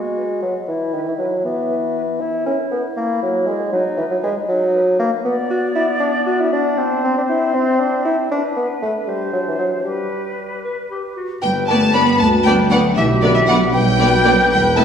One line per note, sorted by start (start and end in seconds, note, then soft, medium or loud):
0.00 0.41 G#3 medium
0.00 0.55 F#4 soft
0.17 0.23 B4 soft
0.43 0.54 F#3 medium
0.43 0.49 B4 soft
0.68 0.96 E3 medium
0.68 1.31 E4 soft
0.94 1.07 D#3 medium
0.94 1.00 B4 soft
1.08 1.13 E3 soft
1.19 1.44 F#3 medium
1.19 1.25 B4 soft
1.44 2.22 E3 medium
1.44 2.08 B3 medium
1.70 1.76 B4 soft
1.95 2.01 B4 soft
2.20 2.84 E4 medium
2.20 2.45 E4 medium
2.46 2.57 C#4 medium
2.46 2.52 A#4 soft
2.71 2.83 B3 medium
2.71 2.77 A#4 soft
2.96 3.22 A#3 medium
2.96 3.60 E4 medium
3.21 3.49 F#3 medium
3.21 3.27 A#4 soft
3.47 3.72 G#3 medium
3.47 3.53 A#4 soft
3.72 3.84 F#3 medium
3.72 4.35 D#4 medium
3.98 4.03 E3 medium
3.98 4.04 B4 medium
4.11 4.17 F#3 medium
4.23 4.35 G#3 medium
4.23 4.29 B4 soft
4.48 4.98 F#3 medium
4.48 5.11 D#4 medium
4.74 4.80 B4 medium
4.99 5.11 A#3 medium
4.99 5.05 B4 medium
5.24 6.73 B3 medium
5.24 5.36 B3 medium
5.24 6.79 D5 medium
5.50 5.62 F#4 medium
5.75 5.87 E4 medium
6.00 6.12 D4 medium
6.27 6.42 F#4 medium
6.41 6.52 E4 medium
6.53 7.03 D4 medium
6.77 8.28 C4 medium
6.77 8.30 C5 medium
7.04 7.16 C4 medium
7.18 7.23 D4 medium
7.29 7.56 E4 medium
7.54 7.82 C4 medium
7.80 8.05 D4 medium
8.05 8.17 E4 medium
8.31 9.83 D4 medium
8.31 8.43 D4 medium
8.31 9.10 B4 soft
8.57 8.68 B3 medium
8.82 8.94 A3 medium
9.07 9.33 G3 medium
9.07 9.85 C5 soft
9.33 9.39 F#3 medium
9.48 9.59 E3 medium
9.59 9.71 F#3 medium
9.85 10.62 G3 medium
9.85 10.58 G4 soft
9.85 11.14 B4 soft
10.64 10.76 B4 soft
10.90 11.02 G4 soft
11.16 11.28 F#4 soft
11.42 12.07 G1 medium
11.42 12.07 G2 medium
11.42 11.51 G3 medium
11.42 12.93 B4 medium
11.42 11.66 G5 medium
11.42 11.51 G5 medium
11.42 11.67 G5 medium
11.67 11.94 A3 medium
11.67 11.78 B3 soft
11.67 11.77 B3 medium
11.67 11.77 D4 medium
11.67 11.77 B4 medium
11.67 11.77 D5 soft
11.67 11.93 A5 medium
11.67 11.95 A5 medium
11.67 11.92 A5 medium
11.93 12.03 B3 medium
11.93 12.20 B3 medium
11.93 12.02 B3 medium
11.93 12.03 D4 medium
11.93 12.02 B4 medium
11.93 12.02 D5 soft
11.93 12.19 B5 medium
11.93 12.21 B5 medium
11.93 12.18 B5 medium
12.18 12.84 D2 medium
12.18 12.46 A3 medium
12.18 12.26 A5 medium
12.18 12.45 A5 medium
12.18 12.44 A5 medium
12.45 12.71 G3 medium
12.45 12.54 B3 medium
12.45 12.55 B3 medium
12.45 12.56 D4 medium
12.45 12.54 B4 medium
12.45 12.54 D5 medium
12.45 12.53 G5 medium
12.45 12.51 G5 medium
12.45 12.70 G5 medium
12.71 12.97 F#3 medium
12.71 12.80 B3 medium
12.71 12.81 B3 medium
12.71 12.81 D4 medium
12.71 12.79 B4 medium
12.71 12.80 D5 medium
12.71 12.79 F#5 medium
12.71 12.77 F#5 medium
12.71 12.96 F#5 medium
12.96 13.61 B1 medium
12.96 13.05 E3 medium
12.96 13.72 G4 medium
12.96 13.04 E5 medium
12.96 13.03 E5 medium
12.96 13.22 E5 medium
13.22 13.36 D3 medium
13.22 13.31 B3 medium
13.22 13.33 B3 medium
13.22 13.32 D4 medium
13.22 13.31 B4 medium
13.22 13.27 D5 medium
13.22 13.35 D5 medium
13.22 13.31 D5 soft
13.34 13.49 E3 medium
13.34 13.40 E5 medium
13.34 13.48 E5 medium
13.48 13.57 F#3 medium
13.48 13.56 B3 medium
13.48 13.58 B3 medium
13.48 13.58 D4 medium
13.48 13.57 B4 medium
13.48 13.57 D5 medium
13.48 13.56 F#5 medium
13.48 13.72 F#5 medium
13.48 13.55 F#5 medium
13.72 14.38 B1 medium
13.72 14.49 G3 medium
13.72 14.85 B4 medium
13.72 14.48 G5 medium
13.72 14.47 G5 medium
13.72 14.49 G5 medium
14.00 14.08 B3 medium
14.00 14.09 B3 medium
14.00 14.10 D4 medium
14.00 14.08 B4 medium
14.00 14.08 D5 medium
14.25 14.34 B3 medium
14.25 14.33 B3 medium
14.25 14.34 D4 medium
14.25 14.33 B4 medium
14.25 14.33 D5 medium
14.50 14.85 E1 medium
14.50 14.85 E2 medium
14.50 14.59 G3 medium
14.50 14.76 G5 medium
14.50 14.75 G5 medium
14.76 14.84 A3 medium
14.76 14.84 B3 medium
14.76 14.85 B3 medium
14.76 14.85 E4 medium
14.76 14.85 B4 medium
14.76 14.85 E5 medium
14.76 14.85 A5 medium
14.76 14.84 A5 medium
14.76 14.82 A5 medium